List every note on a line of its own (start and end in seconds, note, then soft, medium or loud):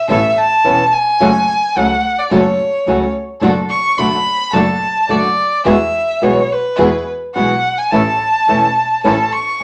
0.09 0.32 A1 medium
0.09 0.18 E3 medium
0.09 0.33 B3 medium
0.09 0.18 B3 medium
0.09 0.33 C#4 medium
0.09 0.18 C#4 medium
0.09 0.19 E4 medium
0.09 0.33 A4 medium
0.09 0.39 E5 medium
0.38 0.94 A5 medium
0.64 0.88 E1 medium
0.64 0.82 E3 medium
0.64 0.82 B3 medium
0.64 0.88 B3 soft
0.64 0.82 C#4 medium
0.64 0.89 C#4 soft
0.64 0.82 E4 medium
0.64 0.89 A4 medium
0.93 1.79 G#5 medium
1.20 1.44 F#1 medium
1.20 1.29 C#3 medium
1.20 1.29 F#3 medium
1.20 1.30 A3 medium
1.20 1.44 C#4 medium
1.20 1.30 C#4 medium
1.20 1.44 F#4 medium
1.20 1.30 F#4 medium
1.20 1.44 A4 medium
1.76 1.99 C#2 medium
1.76 1.93 C#3 medium
1.76 1.93 F#3 medium
1.76 1.93 A3 medium
1.76 1.99 C#4 soft
1.76 1.93 C#4 medium
1.76 2.00 F#4 soft
1.76 1.93 F#4 medium
1.76 2.00 A4 medium
1.76 2.20 F#5 medium
2.19 2.32 D5 medium
2.31 2.55 F#1 loud
2.31 2.40 C#3 medium
2.31 2.40 F#3 medium
2.31 2.40 A3 medium
2.31 2.55 C#4 medium
2.31 2.41 C#4 medium
2.31 2.55 F#4 medium
2.31 2.41 F#4 medium
2.31 2.55 A4 medium
2.31 3.11 C#5 medium
2.87 3.10 C#2 medium
2.87 3.04 C#3 medium
2.87 3.04 F#3 medium
2.87 3.04 A3 medium
2.87 3.10 C#4 medium
2.87 3.04 C#4 medium
2.87 3.10 F#4 soft
2.87 3.04 F#4 medium
2.87 3.10 A4 medium
3.42 3.65 F#1 medium
3.42 3.51 D3 medium
3.42 3.51 A3 medium
3.42 3.52 D4 loud
3.42 3.66 D4 medium
3.42 3.66 F#4 medium
3.42 3.52 F#4 medium
3.42 3.66 A4 medium
3.70 4.00 C#6 loud
3.98 4.22 F#1 medium
3.98 4.15 D3 medium
3.98 4.15 A3 medium
3.98 4.22 D4 medium
3.98 4.16 D4 medium
3.98 4.22 F#4 soft
3.98 4.16 F#4 medium
3.98 4.22 A4 medium
3.98 4.55 B5 medium
4.53 4.77 F#1 medium
4.53 4.63 D3 medium
4.53 4.63 A3 medium
4.53 4.77 D4 medium
4.53 4.63 D4 medium
4.53 4.77 F#4 medium
4.53 4.64 F#4 medium
4.53 4.77 A4 medium
4.53 5.12 A5 medium
5.09 5.33 F#1 medium
5.09 5.27 D3 medium
5.09 5.27 A3 medium
5.09 5.27 D4 medium
5.09 5.33 D4 soft
5.09 5.27 F#4 medium
5.09 5.33 F#4 soft
5.09 5.33 A4 medium
5.09 5.66 D5 medium
5.65 5.89 E2 medium
5.65 5.75 B2 medium
5.65 5.75 E3 medium
5.65 5.75 G#3 medium
5.65 5.75 B3 medium
5.65 5.89 E4 medium
5.65 5.89 F#4 medium
5.65 5.75 F#4 medium
5.65 5.90 G#4 medium
5.65 6.25 E5 medium
6.22 6.46 B1 medium
6.22 6.39 B2 medium
6.22 6.39 E3 medium
6.22 6.40 G#3 medium
6.22 6.40 B3 medium
6.22 6.46 E4 soft
6.22 6.46 F#4 soft
6.22 6.40 F#4 medium
6.22 6.46 G#4 soft
6.22 6.53 C#5 medium
6.52 7.08 B4 medium
6.78 7.03 E2 medium
6.78 6.88 B2 medium
6.78 6.88 E3 medium
6.78 6.88 G#3 medium
6.78 6.88 B3 medium
6.78 7.02 E4 medium
6.78 7.02 F#4 medium
6.78 6.88 F#4 medium
6.78 7.02 G#4 medium
7.35 7.60 B1 medium
7.35 7.53 B2 medium
7.35 7.53 E3 medium
7.35 7.53 G#3 medium
7.35 7.53 B3 medium
7.35 7.59 E4 soft
7.35 7.59 F#4 soft
7.35 7.53 F#4 medium
7.35 7.60 G#4 medium
7.35 7.80 F#5 medium
7.78 7.92 G#5 medium
7.91 8.16 A1 medium
7.91 8.01 E3 medium
7.91 8.01 A3 medium
7.91 8.16 C#4 medium
7.91 8.02 C#4 medium
7.91 8.16 E4 medium
7.91 8.02 E4 medium
7.91 8.16 A4 medium
7.91 9.03 A5 medium
8.48 8.72 E1 medium
8.48 8.66 E3 medium
8.48 8.66 A3 medium
8.48 8.72 C#4 soft
8.48 8.66 C#4 medium
8.48 8.73 E4 soft
8.48 8.66 E4 medium
8.48 8.73 A4 medium
9.03 9.29 A1 medium
9.03 9.14 E3 medium
9.03 9.14 A3 medium
9.03 9.14 C#4 medium
9.03 9.29 C#4 medium
9.03 9.29 E4 medium
9.03 9.14 E4 medium
9.03 9.29 A4 medium
9.03 9.34 A5 medium
9.32 9.63 C#6 medium